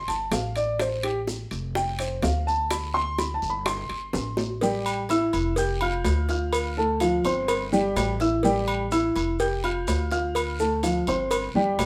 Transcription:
0.08 G1 A5, high bongo, high timbale, maracas
0.31 A1 F5, high bongo, low bongo, high timbale, low timbale, short guiro, maracas
0.56 D5, high timbale, short guiro, maracas
0.80 C5, high bongo, high timbale, long guiro, maracas
1.03 G4, high bongo, high timbale
1.27 high bongo, low timbale, short guiro, maracas
1.51 F1, high bongo, high timbale, short guiro, maracas
1.75 G5, high bongo, long guiro, maracas
1.99 C5, high bongo, high timbale, maracas
2.22 D2 F5, high bongo, low bongo, high timbale, low timbale, short guiro, maracas
2.47 A5, short guiro, maracas
2.71 B5, high bongo, high timbale, long guiro, maracas
2.94 C6, high bongo
3.18 B5, high bongo, high timbale, low timbale, short guiro, maracas
3.34 A5
3.42 G1, high bongo, short guiro, maracas
3.50 B5
3.66 C6, high bongo, high timbale, long guiro, maracas
3.89 G1, high bongo, high timbale
4.13 A1, high bongo, low bongo, high timbale, short guiro, maracas
4.37 high bongo, low timbale, short guiro, maracas
4.61 G3 G4 G5, cowbell, long guiro, maracas
4.86 low agogo, maracas
5.09 E4 E5 E6, cowbell, low timbale, low agogo, short guiro, maracas
5.33 F1, cowbell, low agogo, short guiro, maracas
5.56 G4 G5 G6, cowbell, long guiro, maracas
5.81 F4 F5 F6, low agogo
6.05 D2, cowbell, low timbale, low agogo, short guiro, maracas
6.29 F4 F5 F6, cowbell, short guiro, maracas
6.53 cowbell, low agogo, long guiro, maracas
6.77 A3 A4 A5
7.00 F3 F4 F5, cowbell, low timbale, low agogo, short guiro, maracas
7.24 G1 C4 C5 C6, low agogo, short guiro, maracas
7.48 cowbell, low agogo, long guiro, maracas
7.72 G3 G4 G5, maracas
7.96 A1, cowbell, low timbale, low agogo, short guiro, maracas
8.20 E4 E5 E6, cowbell, short guiro, maracas
8.43 G3 G4 G5, cowbell, long guiro, maracas
8.68 low agogo
8.91 E4 E5 E6, cowbell, low timbale, low agogo, short guiro, maracas
9.16 F1, cowbell, low agogo, short guiro, maracas
9.39 G4 G5 G6, cowbell, long guiro, maracas
9.64 F4 F5 F6, low agogo
9.87 D2, cowbell, low timbale, low agogo, short guiro, maracas
10.11 F4 F5 F6, cowbell, short guiro, maracas
10.35 cowbell, low agogo, long guiro, maracas
10.59 A3 A4 A5, maracas
10.83 F3 F4 F5, cowbell, low timbale, low agogo, short guiro, maracas
11.07 G1 C4 C5 C6, low agogo, short guiro, maracas
11.31 cowbell, low agogo, long guiro, maracas
11.54 G1 G3 G4 G5
11.78 A1, cowbell, low timbale, low agogo, short guiro, maracas

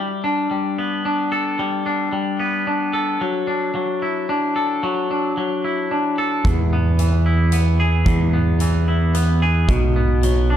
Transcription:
Already playing: G3
0.24 D4
0.51 G3
0.78 B3
1.05 D4
1.32 A4
1.59 G3
1.86 D4
2.12 G3
2.40 B3
2.67 D4
2.93 A4
3.21 F#3
3.47 D4
3.75 F#3
4.02 E4
4.29 D4
4.56 A4
4.83 F#3
5.11 D4
5.37 F#3
5.65 E4
5.91 D4
6.18 A4
6.45 E2, kick, closed hi-hat
6.73 B3
6.99 E3, closed hi-hat
7.26 E4
7.52 B3, closed hi-hat
7.80 G#4
8.06 E2, kick, closed hi-hat
8.33 B3
8.60 E3, closed hi-hat
8.88 E4
9.15 B3, closed hi-hat
9.42 G#4
9.68 B1 B2, kick, closed hi-hat
9.96 B3
10.23 F#3, closed hi-hat
10.50 D4

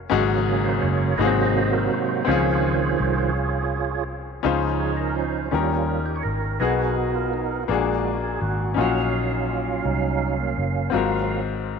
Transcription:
0.10 G#1 G#2 C#3 F#3 A#3 C#4 D#4 F#4 G#4
0.46 G#4
0.64 C5
0.82 F#1 C#5
1.18 G#1 G#2 C3 F#3 A#3 D#4 F#4 G#4 C5 D#5
1.25 C4
1.72 A#4
1.90 C5
2.25 C#2 D#3 F3 C4 C#4 F4 G#4 C5 C#5
2.29 F4 G#4
3.00 C2
4.43 C#2 C#3 F3 C#4 D#4 F4 C5
4.80 G#4
4.97 A#4
5.16 C5
5.51 D#2 D#3 G3 C#4 D#4 F4 G4 A#4
5.88 A#4
6.06 G4
6.16 C#5
6.23 G#1 A#4
6.60 B1 B2 B3 D#4 F#4 G#4 A#4
6.96 F#4
7.14 F4
7.34 D#4
7.63 F4
7.68 A#1 A#2 G#3 A#3 D4 F#4 G#4
8.24 G#4
8.41 G#1 F#4
8.74 A#1 A#2 F#3 C#4 D#4
8.78 F4 F#4 F5
9.31 D#4
9.49 F4
9.85 C2 D#4
10.40 A#3
10.58 F#1
10.90 G#1 G#2 F#3 A#3 C4 F4 F5
10.94 F#4 A#4

